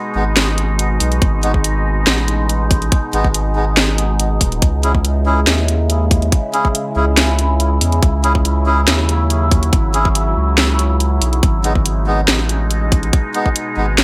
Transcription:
Already playing: synth drone B2 G#3 D#4
0.15 sub bass G#1, melodica G#3 B3 D#4
0.37 snare, closed hi-hat
0.58 closed hi-hat
0.79 closed hi-hat
1.00 sub bass B1, open hi-hat
1.12 closed hi-hat
1.22 sub bass G#1, kick, closed hi-hat
1.43 melodica G#3 B3 D#4, closed hi-hat
1.54 kick
1.64 closed hi-hat
2.07 sub bass A1, snare, closed hi-hat
2.28 closed hi-hat
2.49 closed hi-hat
2.71 kick, open hi-hat
2.82 closed hi-hat
2.92 kick, closed hi-hat
3.13 sub bass G#1, melodica G#3 B3 D#4, closed hi-hat
3.24 kick
3.34 closed hi-hat
3.56 melodica G#3 B3 D#4
3.77 snare, closed hi-hat
3.98 closed hi-hat
4.20 closed hi-hat
4.41 sub bass D#1, kick, open hi-hat
4.52 closed hi-hat
4.62 sub bass C#2, synth drone C#3 G#3 E4, kick, closed hi-hat
4.83 melodica C#4 E4 G#4, closed hi-hat
4.95 kick
5.05 closed hi-hat
5.26 melodica C#4 E4 G#4
5.47 sub bass D#2, snare, closed hi-hat
5.68 closed hi-hat
5.90 closed hi-hat
6.11 kick, open hi-hat
6.22 closed hi-hat
6.32 kick, closed hi-hat
6.53 melodica C#4 E4 G#4, closed hi-hat
6.65 kick
6.75 closed hi-hat
6.96 sub bass C#2, melodica C#4 E4 G#4
7.17 snare, closed hi-hat
7.39 closed hi-hat
7.60 closed hi-hat
7.81 sub bass E2, open hi-hat
7.92 closed hi-hat
8.03 sub bass C#2, synth drone F#3, kick, closed hi-hat
8.24 melodica C#4 E4 G#4, closed hi-hat
8.35 kick
8.45 closed hi-hat
8.66 melodica C#4 E4 G#4
8.88 sub bass D#2, snare, closed hi-hat
9.09 closed hi-hat
9.30 closed hi-hat
9.51 kick, open hi-hat
9.63 closed hi-hat
9.73 sub bass G#1, kick, closed hi-hat
9.94 melodica C#4 E4 G#4, closed hi-hat
10.05 kick
10.15 closed hi-hat
10.37 sub bass C#2
10.58 snare, closed hi-hat
10.79 closed hi-hat
11.00 closed hi-hat
11.22 sub bass B1, open hi-hat
11.33 closed hi-hat
11.43 sub bass G#1, synth drone B2 G#3 D#4, kick, closed hi-hat
11.64 melodica G#3 B3 D#4, closed hi-hat
11.75 kick
11.86 closed hi-hat
12.07 melodica G#3 B3 D#4
12.28 sub bass A1, snare, closed hi-hat
12.49 closed hi-hat
12.71 closed hi-hat
12.92 kick, open hi-hat
13.03 closed hi-hat
13.13 kick, closed hi-hat
13.34 melodica G#3 B3 D#4, closed hi-hat
13.46 kick
13.56 closed hi-hat
13.77 sub bass G#1, melodica G#3 B3 D#4
13.98 snare, closed hi-hat

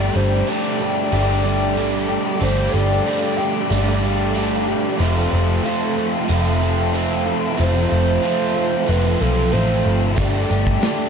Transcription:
Already playing: overdriven electric guitar G3 A3 D4 G4, analog synth pad A4 D5 G5 D6, soft synth lead D5
0.15 picked electric bass G1, twelve-string acoustic guitar G3, overdriven electric guitar A3 D4 G4, soft synth lead C5
0.47 overdriven electric guitar G3 A3 D4 G4, soft synth lead D5
0.80 overdriven electric guitar A3 D4 G4
1.12 picked electric bass G1, overdriven electric guitar G3 A3 D4 G4, soft synth lead D5
1.44 twelve-string acoustic guitar G3, overdriven electric guitar A3 D4 G4
1.77 overdriven electric guitar G3 A3 D4 G4
2.08 twelve-string acoustic guitar G3, overdriven electric guitar A3 D4 G4
2.41 picked electric bass G1, overdriven electric guitar G3 A3 D4 G4, soft synth lead C5, analog synth pad F5
2.72 picked electric bass G1, twelve-string acoustic guitar G3, overdriven electric guitar G4, soft synth lead D5
2.76 overdriven electric guitar A3 D4
3.07 overdriven electric guitar G3 A3 D4 G4
3.37 overdriven electric guitar G4, soft synth lead G5
3.41 overdriven electric guitar A3 D4
3.70 picked electric bass G1, overdriven electric guitar G3 A3 D4, soft synth lead D5
3.75 overdriven electric guitar G4
4.03 twelve-string acoustic guitar G3, overdriven electric guitar A3 D4 G4
4.35 overdriven electric guitar G3 A3 D4 G4
4.67 twelve-string acoustic guitar G3, overdriven electric guitar A3 D4 G4
5.00 picked electric bass F1, overdriven electric guitar F2 C3 F3 A3 C4 F4, analog synth pad A4 E5 F5 A5
5.32 picked electric bass F1, overdriven electric guitar F3 A3 C4 F4
5.65 overdriven electric guitar F3 A3 C4 F4
5.97 overdriven electric guitar F3 A3 C4 F4
6.29 picked electric bass F1, overdriven electric guitar F2 C3 F3 A3 C4 F4
6.61 overdriven electric guitar F3 A3 C4 F4
6.93 overdriven electric guitar F3 A3 C4 F4
7.26 overdriven electric guitar F3 A3 C4 F4
7.57 picked electric bass F1, overdriven electric guitar F2 C3 F3 A3 C4 F4, soft synth lead C5
7.90 picked electric bass F1, overdriven electric guitar F3 A3 C4 F4
8.23 overdriven electric guitar F3 A3 C4 F4
8.56 overdriven electric guitar F3 A3 C4 F4
8.87 picked electric bass F1, overdriven electric guitar F2 C3 F3 A3 C4 F4, soft synth lead B4
9.20 picked electric bass B1, overdriven electric guitar F3 A3 C4 F4, soft synth lead A4
9.52 picked electric bass A1, overdriven electric guitar F3 A3 C4 F4, soft synth lead C5
9.85 picked electric bass G1, overdriven electric guitar F3 A3 C4 F4
10.17 picked electric bass G1, overdriven electric guitar G3 A3 D4 G4, soft synth lead D5, analog synth pad D5 G5 D6, kick, closed hi-hat
10.50 picked electric bass G1, overdriven electric guitar A3 D4 G4, closed hi-hat
10.67 kick
10.83 overdriven electric guitar G3 A3 D4 G4, snare, closed hi-hat

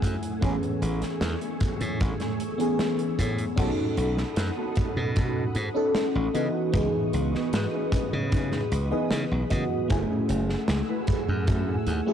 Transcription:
Already playing: fm electric piano A3 C#4 E4 G#4, string machine A3 F#5 G#5 E6
0.02 slap bass F#2, muted clean electric guitar stroke, kick, closed hi-hat
0.23 closed hi-hat
0.41 slap bass A1, fm electric piano E3 B3 C#4 G#4, clean electric guitar A3 C#4 G#4, string machine A3 G#5 C#6 E6, kick, closed hi-hat
0.63 closed hi-hat
0.82 slap bass A1, closed hi-hat
1.02 muted slap bass stroke, snare, closed hi-hat
1.21 slap bass E2, snare, closed hi-hat
1.41 closed hi-hat
1.60 kick, closed hi-hat
1.81 slap bass A2, closed hi-hat
2.00 slap bass A1, muted clean electric guitar stroke, kick, closed hi-hat
2.20 clean electric guitar A3 C#4 G#4, snare, closed hi-hat
2.40 closed hi-hat
2.58 fm electric piano E3 B3 C#4 G#4, clean electric guitar A3 C#4 G#4, closed hi-hat
2.79 snare, closed hi-hat
2.99 closed hi-hat
3.19 slap bass A2, muted clean electric guitar stroke, kick, closed hi-hat
3.38 closed hi-hat
3.56 slap bass B1, clean electric guitar B3 D#4 F#4 A4, fm electric piano C#4 D#4 F#4 A4, string machine A4 F#5 B5 D#6, kick, closed hi-hat, crash
3.97 slap bass B1, closed hi-hat
4.17 snare
4.36 slap bass F#2, snare, closed hi-hat
4.57 clean electric guitar B3 D#4 F#4 A4
4.75 kick, closed hi-hat
4.97 slap bass B2
5.16 clean electric guitar B3 D#4 F#4 A4, kick, closed hi-hat
5.55 slap bass G#2, closed hi-hat
5.75 clean electric guitar B3 D#4 F#4 A4, fm electric piano C#4 D#4 F#4 A4
5.95 snare, closed hi-hat
6.15 slap bass A1
6.34 slap bass C#3, fm electric piano E3 B3 F#4 D#5, clean electric guitar C#4 D#4 E4 B4, string machine B4 C#6 D#6, closed hi-hat
6.72 slap bass C#2, fm electric piano E3 B3 G#4 D#5, kick, closed hi-hat
7.13 slap bass C#2, closed hi-hat
7.34 muted slap bass stroke, snare
7.53 slap bass G#2, snare, closed hi-hat
7.73 clean electric guitar C#4 D#4 E4 B4
7.92 string machine B5, kick, closed hi-hat
8.13 slap bass C#3
8.31 clean electric guitar C#4 D#4 E4 B4, kick, closed hi-hat
8.52 snare
8.72 slap bass C#2, closed hi-hat
8.91 fm electric piano E3 B3 G#4 D#5, clean electric guitar C#4 D#4 E4 B4, muted slap bass stroke
9.11 slap bass C#3, snare, closed hi-hat
9.31 slap bass B1
9.50 slap bass C#3, fm electric piano E3 B3 F#4 D#5, muted clean electric guitar stroke, kick, closed hi-hat
9.88 slap bass F#1, fm electric piano A3 C#4 E4 G#4, clean electric guitar A3 E4 F#4 G#4, string machine A3 F#5 G#5 E6, kick, closed hi-hat
10.29 slap bass F#1, closed hi-hat
10.49 snare
10.68 slap bass C#2, snare, closed hi-hat
10.88 clean electric guitar A3 E4 F#4 B4
11.07 kick, closed hi-hat
11.28 slap bass F#2
11.47 clean electric guitar A3 E4 F#4 G#4, kick, closed hi-hat
11.87 slap bass D#2, closed hi-hat
12.06 fm electric piano A3 C#4 E4 G#4, clean electric guitar A3 E4 F#4 G#4

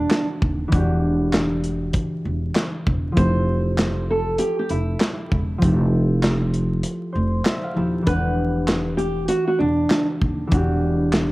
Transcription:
Already playing: harp E3 D4 G4 F#5, nylon-string guitar D4
0.11 snare, clap, closed hi-hat
0.42 upright bass D#1, kick
0.68 harp E3 D4
0.72 upright bass E1, harp F#4, kick, closed hi-hat
0.77 harp G4
1.33 snare, clap, closed hi-hat
1.64 closed hi-hat
1.93 kick, closed hi-hat
2.25 upright bass E1
2.56 snare, clap, closed hi-hat
2.87 upright bass E1, kick
3.12 harp F3 E4
3.17 upright bass F1, harp G4, nylon-string guitar C5, kick, closed hi-hat
3.21 harp A4
3.78 snare, clap, closed hi-hat
4.11 nylon-string guitar A4
4.38 nylon-string guitar G4, closed hi-hat
4.59 nylon-string guitar G4
4.69 upright bass F1, nylon-string guitar E4, closed hi-hat
5.01 snare, clap, closed hi-hat
5.32 upright bass E1, kick
5.58 harp F3 E4, closed hi-hat
5.62 upright bass F1, harp G4, kick
5.68 harp A4
6.23 snare, clap, closed hi-hat
6.54 closed hi-hat
6.83 closed hi-hat
7.13 upright bass F1, harp C5
7.45 harp E5, snare, clap, closed hi-hat
7.64 harp F5
7.74 upright bass D#1, harp F3 E4 G4 A5
7.79 harp A4
8.02 harp E3 D4
8.07 upright bass E1, nylon-string guitar B4, harp F#5, kick, closed hi-hat
8.12 harp G4
8.68 snare, clap, closed hi-hat
8.97 nylon-string guitar G4, closed hi-hat
9.28 nylon-string guitar F#4, closed hi-hat
9.47 nylon-string guitar F#4
9.59 upright bass E1, nylon-string guitar D4
9.90 snare, clap, closed hi-hat
10.22 upright bass D#1, kick
10.47 harp E3 D4
10.52 upright bass E1, harp F#4, kick, closed hi-hat
10.57 harp G4
11.13 snare, clap, closed hi-hat

